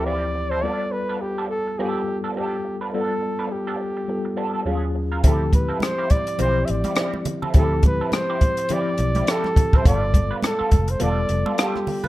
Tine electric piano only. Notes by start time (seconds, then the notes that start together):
Already playing: D2 E3 F3 C4 E4 G4
0.63 G3 B3 F4 A4
1.79 G3 B3 F4 A4
2.94 G3 B3 F4 A4
4.08 G3 B3 F4 A4
4.65 D#2 F#3 C#4 F4 G#4
5.24 F3 C4 E4 G4
6.38 F3 C4 E4 G4
7.55 F3 C4 E4 G4
8.70 F3 C4 E4 G4
9.84 G3 B3 F4 A4
11.00 G3 B3 F4 A4